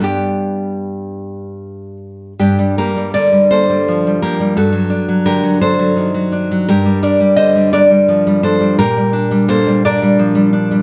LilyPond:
\new Staff \with { instrumentName = "Nylon-string guitar" } { \time 6/8 \key g \major \tempo 4. = 56 << { g'2~ g'8 r8 | \key g \minor <d' g'>8 <g' bes'>8 <bes' d''>8 <a' c''>4 <g' bes'>8 | <fis' a'>4 <g' bes'>8 <a' c''>4. | <g' bes'>8 <bes' d''>8 <c'' ees''>8 <bes' d''>4 <a' c''>8 |
<g' bes'>4 <a' c''>8 <bes' d''>4. | } \\ { <g, g b>2. | g,16 g16 bes16 g16 d16 g16 bes16 g16 f16 g16 bes16 g16 | g,16 fis16 d'16 fis16 d16 fis16 d'16 fis16 ees16 fis16 d'16 fis16 | g,16 g16 d'16 g16 d16 g16 d'16 g16 f16 g16 d'16 g16 |
bes,16 g16 d'16 g16 bes16 g16 d'16 g16 f16 g16 d'16 g16 | } >> }